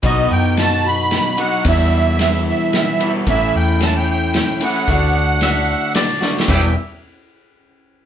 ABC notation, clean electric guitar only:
X:1
M:3/4
L:1/8
Q:1/4=112
K:Edor
V:1 name="Clean electric guitar"
[B,,F,B,^DF]4- [B,,F,B,DF] [B,,F,B,DF] | [E,,B,,E,G,B,E]4- [E,,B,,E,G,B,E] [E,,B,,E,G,B,E] | [A,,E,A,CE]4- [A,,E,A,CE] [A,,E,A,CE] | [D,A,DF]4- [D,A,DF] [D,A,DF] |
[E,,B,,E,G,B,G] z4 z |]